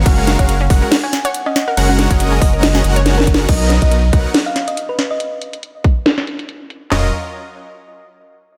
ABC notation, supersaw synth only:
X:1
M:4/4
L:1/16
Q:"Swing 16ths" 1/4=140
K:Cblyd
V:1 name="Supersaw synth"
[A,DGBf]3 [A,DGBf] z2 [A,DGBg] z8 z | [A,DGBg]3 [A,DGBe]3 [A,DGBe]4 [A,DGBg]6 | [^F,=B,^D^A^d]3 [F,B,DAd] z2 [F,B,DA^f] z8 z | z16 |
[G,DFBe]2 z12 z2 |]